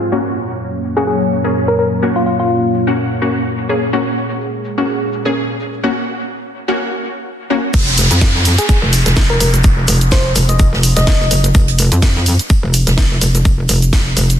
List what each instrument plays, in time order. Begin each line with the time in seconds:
0.12 analog synth pad F#3 A#3 C#5, synth stab A#3 C#4 F#4
0.36 cabasa
0.84 cabasa
0.97 synth stab A#3 C#4 F#4, soft synth lead G#4
1.07 soft synth lead G#4
1.31 cabasa
1.44 synth stab A#3 C#4 G#4
1.68 soft synth lead A#4
1.79 soft synth lead A#4, cabasa
1.92 cabasa
2.02 synth stab A#3 C#4 F#4
2.16 soft synth lead F4
2.26 soft synth lead F4, cabasa
2.40 soft synth lead F4, cabasa
2.50 cabasa
2.74 cabasa
2.87 synth stab A#3 C#4 F#4
2.98 cabasa
3.22 synth stab A#3 C#4 F#4, cabasa
3.35 cabasa
3.46 cabasa
3.69 synth stab A#3 C#4 G#4, cabasa
3.83 cabasa
3.93 synth stab A#3 C#4 F#4, analog synth pad G#4
4.17 cabasa
4.30 cabasa
4.41 cabasa
4.65 cabasa
4.78 synth stab A#3 C#4 F#4, cabasa
4.89 cabasa
5.12 cabasa
5.25 synth stab A#3 C#4 G#4, cabasa
5.36 cabasa
5.60 cabasa
5.73 cabasa
5.83 synth stab A#3 C#4 F#4
6.68 synth stab A#3 C#4 F#4
7.50 synth stab A#3 C#4 F#4
7.74 wobble bass F1, kick, closed hi-hat, crash, downlifter, cabasa, shaker
7.87 closed hi-hat
7.97 open hi-hat, cabasa, shaker
8.11 wobble bass F2, closed hi-hat, cabasa
8.21 kick, snare, closed hi-hat, shaker
8.35 snare
8.45 open hi-hat, cabasa, shaker
8.58 soft synth lead G#4, closed hi-hat, cabasa
8.69 kick, closed hi-hat, cabasa, shaker
8.82 wobble bass F1
8.93 open hi-hat, cabasa, shaker
9.06 wobble bass F1, snare, closed hi-hat, cabasa
9.16 kick, snare, closed hi-hat, cabasa, shaker
9.30 soft synth lead A#4
9.40 wobble bass F1, soft synth lead A#4, open hi-hat, cabasa, shaker
9.54 closed hi-hat, cabasa
9.64 kick, closed hi-hat, cabasa, shaker
9.87 wobble bass F1, open hi-hat, cabasa, shaker
10.01 closed hi-hat, cabasa
10.12 soft synth lead C5, kick, snare, closed hi-hat, cabasa, shaker
10.35 wobble bass F1, open hi-hat, cabasa, shaker
10.49 soft synth lead D#5, closed hi-hat, cabasa
10.59 kick, closed hi-hat, cabasa, shaker
10.73 wobble bass F1, snare
10.83 open hi-hat, cabasa, shaker
10.96 wobble bass F1, soft synth lead D#5, snare, closed hi-hat, cabasa
11.07 kick, snare, closed hi-hat, cabasa, shaker
11.20 snare
11.31 wobble bass F#1, open hi-hat, cabasa, shaker
11.44 closed hi-hat, cabasa
11.55 wobble bass F1, kick, closed hi-hat, cabasa, shaker
11.68 closed hi-hat
11.79 open hi-hat, cabasa, shaker
11.92 wobble bass F2, closed hi-hat, cabasa
12.02 kick, snare, closed hi-hat, cabasa, shaker
12.15 snare
12.26 open hi-hat, cabasa, shaker
12.39 closed hi-hat, cabasa
12.50 kick, closed hi-hat, cabasa, shaker
12.63 wobble bass F1
12.73 open hi-hat, cabasa, shaker
12.87 wobble bass F1, snare, closed hi-hat, cabasa
12.97 kick, snare, closed hi-hat, cabasa, shaker
13.21 wobble bass F1, open hi-hat, cabasa, shaker
13.35 closed hi-hat, cabasa
13.45 kick, closed hi-hat, cabasa, shaker
13.69 wobble bass F1, open hi-hat, cabasa, shaker
13.82 closed hi-hat, cabasa
13.93 kick, snare, closed hi-hat, cabasa, shaker
14.17 wobble bass F1, open hi-hat, cabasa, shaker
14.30 closed hi-hat, cabasa